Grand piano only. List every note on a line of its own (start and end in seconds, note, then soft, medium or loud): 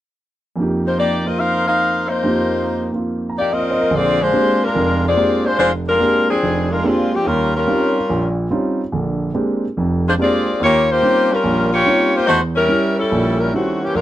0.56 2.22 F2 medium
0.56 2.22 F3 soft
0.56 1.24 A#3 soft
0.60 2.23 D#4 soft
0.60 2.23 G4 medium
1.25 2.23 A#3 soft
1.25 2.25 C4 soft
1.25 2.25 F4 soft
2.23 3.91 F2 soft
2.23 3.91 F3 soft
2.23 2.91 A#3 soft
2.23 3.92 D#4 soft
2.23 3.92 G4 medium
2.92 3.91 A#3 soft
2.92 3.92 C4 soft
2.92 3.92 F4 soft
3.30 3.42 A#5 soft
3.39 3.54 F5 soft
3.51 3.70 D#5 soft
3.60 3.78 D5 soft
3.71 3.84 C5 soft
3.81 3.95 A#4 soft
3.91 4.27 A#1 medium
3.91 4.28 D3 medium
4.33 4.62 G#3 soft
4.33 4.63 A#3 soft
4.33 4.63 C4 soft
4.33 4.63 D4 soft
4.33 4.63 G4 medium
4.75 5.11 F1 medium
4.75 5.11 F2 medium
5.17 5.46 G#3 soft
5.17 5.46 A#3 soft
5.17 5.46 C4 soft
5.17 5.47 D4 soft
5.17 5.47 G4 medium
5.59 5.95 F1 medium
6.00 6.30 G#3 medium
6.00 6.30 A#3 soft
6.00 6.30 C4 soft
6.00 6.30 D4 soft
6.00 6.30 G4 medium
6.43 6.79 F1 medium
6.84 7.13 G#3 soft
6.84 7.13 A#3 soft
6.84 7.14 C4 soft
6.84 7.14 D4 soft
6.84 7.14 G4 medium
7.25 7.62 D#2 medium
7.67 7.97 G3 medium
7.67 7.97 C4 soft
7.67 7.97 C#4 soft
7.67 7.97 D#4 soft
7.67 7.97 F4 medium
8.09 8.46 A#1 medium
8.09 8.46 A#2 medium
8.51 8.80 G3 soft
8.51 8.80 C4 soft
8.51 8.81 C#4 soft
8.51 8.81 D#4 soft
8.51 8.81 F4 medium
8.92 9.29 A#1 medium
8.92 9.29 D3 medium
9.34 9.64 G#3 medium
9.34 9.64 A#3 soft
9.34 9.64 C4 soft
9.34 9.64 D4 soft
9.34 9.65 G4 soft
9.77 10.13 F1 medium
9.77 10.13 F2 medium
10.19 10.48 G#3 soft
10.19 10.48 A#3 soft
10.19 10.48 C4 soft
10.19 10.48 D4 soft
10.19 10.49 G4 medium
10.60 10.97 D#2 medium
11.02 11.32 G3 soft
11.02 11.32 C4 soft
11.02 11.32 C#4 soft
11.02 11.32 D#4 soft
11.02 11.32 F4 medium
11.44 11.80 A#1 medium
11.44 11.80 A#2 medium
11.86 12.15 G3 soft
11.86 12.15 C4 soft
11.86 12.15 C#4 soft
11.86 12.15 D#4 soft
11.86 12.15 F4 medium
12.28 12.64 E2 medium
12.68 12.98 G3 soft
12.68 12.99 C#4 soft
12.68 12.99 E4 medium
13.12 13.48 A#1 medium
13.12 13.48 A#2 medium
13.53 13.83 G3 soft
13.53 13.83 C#4 soft
13.53 13.83 E4 soft
13.95 14.01 A#1 medium